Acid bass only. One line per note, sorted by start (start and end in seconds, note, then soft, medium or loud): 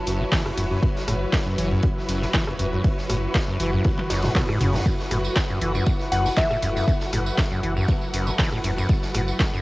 0.07 0.22 F#2 medium
0.20 0.24 F#3 medium
0.32 0.43 E3 loud
0.45 0.52 F#1 medium
0.57 0.65 F#2 medium
0.71 0.80 F#2 medium
0.83 0.87 F#2 medium
1.08 1.15 A2 medium
1.46 1.56 F#2 medium
1.58 1.69 E3 medium
1.71 1.81 F#2 loud
2.09 2.23 F#2 medium
2.22 2.26 F#3 medium
2.34 2.45 E3 loud
2.47 2.54 F#1 medium
2.59 2.66 F#2 medium
2.72 2.82 F#2 medium
2.84 2.89 F#2 medium
3.10 3.17 A2 medium
3.48 3.58 F#2 medium
3.60 3.71 E3 medium
3.73 3.83 F#2 loud
4.10 4.25 F#2 medium
4.24 4.34 A2 medium
4.36 4.47 B2 medium
4.49 4.59 G#2 loud
4.61 4.76 C#3 medium
4.74 4.81 F#2 medium
4.86 4.90 F#2 medium
5.11 5.19 A2 medium
5.50 5.60 F#2 medium
5.62 5.73 E3 medium
5.75 5.85 F#2 loud
6.12 6.27 F#2 medium
6.25 6.29 F#3 medium
6.37 6.48 E3 loud
6.51 6.57 A2 medium
6.62 6.70 F#2 medium
6.76 6.86 F#2 medium
6.88 6.92 F#2 medium
7.13 7.20 A2 medium
7.51 7.61 F#2 medium
7.63 7.74 E3 medium
7.77 7.86 F#2 loud
7.88 7.93 F#2 medium
8.14 8.29 F#2 medium
8.27 8.31 F#3 medium
8.39 8.50 E3 loud
8.52 8.59 A2 medium
8.64 8.71 F#2 medium
8.78 8.87 F#2 medium
8.89 8.94 F#2 medium
9.15 9.22 A2 medium
9.53 9.62 F#2 medium